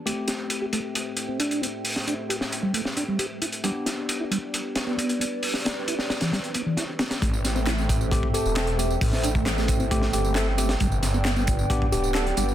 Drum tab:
HH |x-x-x-x-x-x-xxx-|o-x-x-x-x-x-x-xx|x-x-x-x-x-x-xxx-|o-x-x-xxxxx-x-xx|
TB |----------------|----------------|----------------|----------------|
CP |----------------|----------------|----------------|----------------|
SD |--o-------------|-o---o---o------|--o-------o-----|-oo--oooo---o-oo|
BD |----------------|----------------|----------------|----------------|

HH |x-x-x-x-x-x-xxx-|o-x-x-x-x-x-x-xx|x-x-x-x-x-x-xxx-|
TB |xxxxxxxxx-xxx-xx|xxx-xxxxx-xxx-x-|xxxxxxxxx-xxx-xx|
CP |----x-------x---|----x-------x---|----x-------x---|
SD |--o-o-------o---|-o--oo---o--o--o|--o-o-------o---|
BD |o-----o-oo------|o--o--o-o-------|o-----o-oo------|